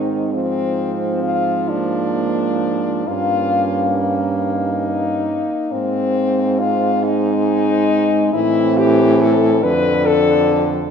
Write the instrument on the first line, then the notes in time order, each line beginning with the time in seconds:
french horn
Already playing: G#2 D#3 C4 D#4
0.33 F3 C4
1.23 F4
1.69 A#3 D4
3.07 G2 A#3 C#4 F4
4.41 D#4
5.72 G#2 C4
6.60 F4
7.03 G#3 D#4
8.32 A2 E3 C4 E4
8.78 G4
9.21 A4
9.62 F2 D3 D4 B4
10.06 A4